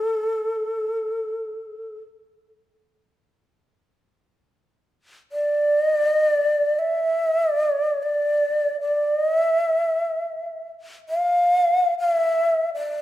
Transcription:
Already playing: A4
5.32 D5
5.82 D#5
5.96 D5
6.11 D#5
6.25 D5
6.79 E5
7.43 D#5
7.59 D5
8.03 D5
8.81 D5
9.15 D#5
9.37 E5
11.09 F5
12.00 F5
12.12 E5
12.75 D5

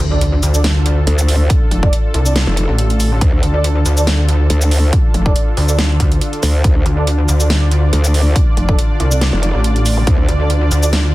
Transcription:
Already playing: D3 D4 F4 A4, impact
0.00 D2
0.11 D4 A4 D5
0.21 closed hi-hat
0.43 D2, closed hi-hat, shaker
0.54 D4 A4 D5, shaker
0.64 snare, closed hi-hat
0.86 closed hi-hat
1.07 D2, closed hi-hat
1.19 closed hi-hat, shaker
1.28 open hi-hat
1.50 kick, closed hi-hat
1.71 F1, closed hi-hat
1.83 D4 A4 D5, kick
1.93 closed hi-hat
2.14 C2, closed hi-hat
2.26 D4 A4 D5, shaker
2.36 snare, closed hi-hat
2.47 F1
2.57 closed hi-hat
2.69 A1
2.79 closed hi-hat
2.90 closed hi-hat
3.00 open hi-hat, shaker
3.21 D2, kick, closed hi-hat
3.43 D2, closed hi-hat
3.54 D4 A4 D5
3.64 closed hi-hat
3.86 D2, closed hi-hat, shaker
3.97 D4 A4 D5, shaker
4.07 snare, closed hi-hat
4.29 closed hi-hat
4.50 D2, closed hi-hat
4.61 closed hi-hat, shaker
4.71 open hi-hat
4.93 kick, closed hi-hat
5.14 F1, closed hi-hat
5.26 D4 A4 D5, kick
5.36 closed hi-hat
5.57 D2, open hi-hat
5.69 D4 A4 D5, shaker
5.79 snare, closed hi-hat
6.00 kick, closed hi-hat
6.12 closed hi-hat
6.21 closed hi-hat
6.33 closed hi-hat
6.43 D2, open hi-hat, shaker
6.64 D2 D5, kick, closed hi-hat
6.86 D2, closed hi-hat
6.97 D4 A4 D5
7.07 closed hi-hat
7.29 D2, closed hi-hat, shaker
7.40 D4 A4 D5, shaker
7.50 snare, closed hi-hat
7.71 closed hi-hat
7.93 D2, closed hi-hat
8.04 closed hi-hat, shaker
8.14 open hi-hat
8.36 kick, closed hi-hat
8.57 F1, closed hi-hat
8.69 D4 A4 D5, kick
8.79 closed hi-hat
9.00 C2, closed hi-hat
9.11 D4 A4 D5, shaker
9.21 snare, closed hi-hat
9.33 F1
9.43 closed hi-hat
9.54 A1
9.64 closed hi-hat
9.76 closed hi-hat
9.86 open hi-hat, shaker
9.97 zap
10.07 D2, kick, closed hi-hat
10.29 D2, closed hi-hat
10.40 D4 A4 D5
10.50 closed hi-hat
10.71 D2, closed hi-hat, shaker
10.83 D4 A4 D5, shaker
10.93 snare, closed hi-hat

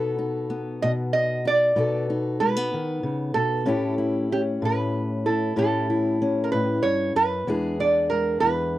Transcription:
Already playing: B2 B3 D#4 A4
0.19 D#4
0.50 B3
0.82 B2 D#5
1.13 D#5
1.45 D#4 D5
1.76 B2 B3 D#4 A4
2.10 D#4
2.40 G#3 B4
2.56 B3
2.74 D#3
3.03 C#3
3.34 B2 A4
3.65 A2 C#4 E4 G4
3.98 E4
4.32 C#4 G4
4.62 A2 B4
5.26 E4 A4
5.56 A2 C#4 E4 G4 A4
5.90 E4
6.22 C#4
6.44 A#4
6.52 A2 B4
6.83 G2 C#5
7.16 F#2 B4
7.47 E2 G#3 D4 G#4
7.80 D4 D5
8.10 G#3 A#4
8.40 E2 B4

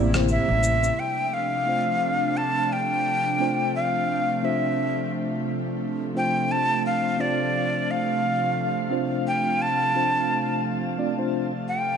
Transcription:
Already playing: A1 C3 G3 A#3 E4 G4 D5
0.14 A#3 C4 E4 G4 C5, cross-stick, low conga, shaker
0.29 E5, shaker
0.48 A1
0.63 shaker
0.84 shaker
0.98 C3 F3 A3 D4 G5
1.34 F5
1.65 A3 C4 D4 F4 C5
2.37 A5
2.73 G5
3.38 A3 C4 D4 F4 C5
3.76 F5
4.41 A3 C4 D4 F4 C5 E5
6.14 A3 C4 D4 F4 C5 G5
6.51 F5 A5
6.86 F5
7.17 A3 C4 D4 F4 C5 D5
7.91 F5
8.89 A3 C4 D4 F4 C5
9.27 G5
9.62 A5
9.94 A3 C4 D4 F4 C5
10.98 A3 C4 D4 F4 D5
11.17 A3 C4 D4 F4 C5
11.68 G5

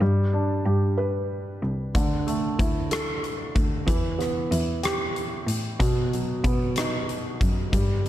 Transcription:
0.01 G2 G3
0.33 D4
0.66 G2 G4
0.98 B4
1.63 C2
1.95 D2 D3, kick, closed hi-hat
2.27 A3, closed hi-hat
2.59 D2 E4, kick, closed hi-hat
2.91 A4, cross-stick, closed hi-hat
3.24 closed hi-hat
3.56 D2, kick, closed hi-hat
3.87 E2 E3, kick, closed hi-hat
4.18 B3, cross-stick, closed hi-hat
4.51 E2 E4, closed hi-hat
4.83 G4, cross-stick, closed hi-hat
5.16 closed hi-hat
5.47 A2, closed hi-hat
5.79 B2, kick, closed hi-hat
6.13 F#3, closed hi-hat
6.44 B2 B3, kick, closed hi-hat
6.76 D#4, cross-stick, closed hi-hat
7.09 closed hi-hat
7.41 F#2, kick, closed hi-hat
7.73 G2 G3, kick, closed hi-hat

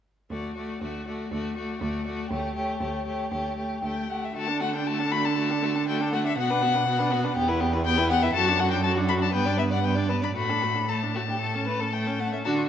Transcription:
0.30 D2 A3 F#4 D5
0.56 A3 F#4 D5
0.81 D2 A3 F#4 D5
1.07 A3 F#4 D5
1.31 D2 A3 F#4 D5
1.56 A3 F#4 D5
1.81 D2 A3 F#4 D5
2.05 A3 F#4 D5
2.30 D2 A3 G4 C#5
2.55 A3 G4 C#5
2.81 D2 A3 G4 C#5
3.05 A3 G4 C#5
3.31 D2 A3 G4 C#5
3.57 A3 G4 C#5
3.82 D2 A3 G4 G5
4.09 A3 G4 F#5
4.24 E5
4.34 D3 A3 F#4 A5
4.47 D4 A4
4.60 A3 F#4 F#5
4.73 D4 A4 G5
4.86 A3 F#4 A5
4.99 D4 A4
5.12 A3 F#4 B5
5.25 D4 A4 A5
5.37 A3 F#4
5.50 D4 A4
5.62 A3 F#4
5.75 D4 A4
5.88 A3 F#4 G5
6.01 D4 A4
6.12 A3 F#4 F#5
6.25 D4 A4 E5
6.36 B2 B3 F#4 F#5
6.50 D4 B4
6.62 B3 F#4
6.75 D4 B4
6.87 B3 F#4
6.99 D4 B4
7.11 B3 F#4
7.24 D4 B4
7.35 E2 B3 G4
7.48 E4 B4
7.60 B3 G4
7.73 E4 B4
7.85 B3 G4 G5
7.97 E4 B4
8.09 B3 G4 F#5
8.22 E4 B4 E5
8.33 F#2 F#4 A4 A5
8.45 D4 F#4
8.58 F#4 A4 F#5
8.69 D4 F#4 G5
8.82 F#4 A4 A5
8.95 D4 F#4
9.07 F#4 A4 B5
9.19 D4 F#4 A5
9.32 G2 B3 B4 G5
9.45 D4 D5
9.57 B3 B4 E5
9.71 D4 D5 F#5
9.83 B3 B4 G5
9.95 D4 D5
10.09 B3 B4 A5
10.22 D4 D5 B5
10.36 A2 A3 F#4 B5
10.49 D4 A4
10.62 A3 F#4
10.75 D4 A4
10.89 A3 A4 A5
11.03 D4
11.15 A3 F#4
11.28 D4 G4
11.40 A3 A4
11.55 C#4
11.67 A3 B4
11.80 C#4 A4
11.93 A3 G5
12.07 C#4
12.20 A3 F#5
12.33 C#4 E5
12.45 D3 D4 F#4 A5

